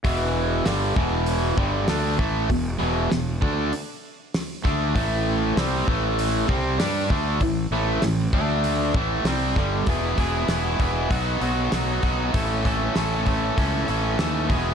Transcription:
<<
  \new Staff \with { instrumentName = "Overdriven electric guitar" } { \clef bass \time 4/4 \key a \lydian \tempo 4 = 98 <e, b, e>4 <g, d g>8 <e, b, e>4 <g, d g>8 <d a d'>8 <a, e a>8 | <e, b,>8 <e, b, e>8 <e, b,>8 <d a d'>8 r4. <d a d'>8 | <a, e a>4 <c g c'>8 <a, e a>4 <c g c'>8 <g d' g'>8 <d a d'>8 | <a, e>8 <a, e a>8 <a, e>8 <d a d'>4 <a, e a>8 <c g c'>8 <g, d g>8 |
<e, b, e b e' gis'>8 <e, b, e b e' gis'>8 <e, b, e b e' gis'>8 <e, b, e b e' gis'>8 <b, fis b dis' fis'>8 <b, fis b dis' fis'>8 <b, fis b dis' fis'>8 <b, fis b dis' fis'>8 | <a, e a cis' a'>8 <a, e a cis' a'>8 <a, e a cis' a'>8 <a, e a cis' a'>8 <a, e a cis' a'>8 <a, e a cis' a'>8 <a, e a cis' a'>8 <e, b, e gis b gis'>8 | }
  \new Staff \with { instrumentName = "Fingered electric bass" } { \clef bass \time 4/4 \key a \lydian e,,4 g,,8 e,,4 g,,8 d,8 a,,8 | e,,8 e,,8 e,,8 d,8 r4. d,8 | a,,4 c,8 a,,4 c,8 g,8 d,8 | a,,8 a,,8 a,,8 d,4 a,,8 c,8 g,,8 |
e,,8 e,,8 e,,8 e,,8 b,,8 b,,8 b,,8 b,,8 | a,,4 a,,4 cis,8 a,,8 dis,8 e,,8 | }
  \new DrumStaff \with { instrumentName = "Drums" } \drummode { \time 4/4 <hho bd>4 <hho sn>8 bd8 hho8 bd8 <hho sn>8 bd8 | <hho bd>4 <hho sn>8 bd8 hho4 <hho sn>8 <bd sn>8 | <hho bd>4 <hho sn>8 bd8 hho8 bd8 <hho sn>8 bd8 | <hho bd>4 <hho sn>8 bd8 hho8 bd8 <hho sn>8 <bd sn>8 |
<hho bd>8 <hho bd>8 <hho sn>8 <hho bd>8 <hho bd>8 hho8 <hho sn>8 <hho bd>8 | <hho bd>8 <hho bd>8 <hho sn>8 <hho bd>8 <hho bd>8 hho8 <hho sn>8 <hho bd>8 | }
>>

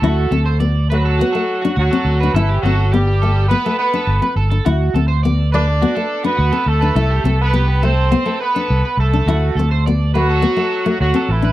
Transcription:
<<
  \new Staff \with { instrumentName = "Clean electric guitar" } { \time 4/4 \key d \mixolydian \tempo 4 = 104 fis'8 a'16 c''16 d''8 b'16 a'16 fis'16 a'8 fis'16 fis'16 a'8 b'16 | a'16 g'16 a'8 g'16 g'16 a'8 b'16 a'16 b'16 a'8 b'16 a'16 a'16 | fis'8 a'16 c''16 d''8 b'16 r16 fis'16 a'8 fis'16 fis'16 a'8 b'16 | a'16 g'16 a'8 g'16 g'16 a'8 c''16 a'16 b'16 a'8 b'16 a'16 a'16 |
fis'8 a'16 c''16 d''8 b'16 a'16 fis'16 a'8 r16 fis'16 a'8 b'16 | }
  \new Staff \with { instrumentName = "Horn section" } { \time 4/4 \key d \mixolydian <a a'>4 r8 <fis fis'>4. <fis fis'>4 | <e e'>8 <fis fis'>8 <g g'>4 <b b'>8 <b b'>4 r8 | r4. <d' d''>4~ <d' d''>16 <b b'>8. <a a'>8~ | <a a'>8. <b b'>8. <c' c''>4 <b b'>4 <a a'>8~ |
<a a'>4 r8 <fis fis'>4. <fis fis'>8 <e e'>8 | }
  \new Staff \with { instrumentName = "Nylon-string guitar" } { \time 4/4 \key d \mixolydian e'8 c'8 b8 a8 b16 a8 d'8 c'8 d'16 | e'8 c'8 b8 a8 b16 a8 d'8 c'8 d'16 | e'8 c'8 b8 a8 b16 a8 d'8 c'8 d'16 | e'8 c'8 b8 a8 b16 a8 d'8 r8 d'16 |
e'8 c'8 b8 a8 b16 a8 a8 c'8 d'16 | }
  \new Staff \with { instrumentName = "Fingered electric bass" } { \clef bass \time 4/4 \key d \mixolydian d,8 d,2 r8 d,16 r16 d,8 | g,,8 g,,2 r8 g,,16 r16 g,,8 | d,8 d,2 r8 d,16 r16 d,8 | c,8 c,2 r8 c,16 r16 c,8 |
d,8 d,2 r8 d,16 r16 a,,8 | }
>>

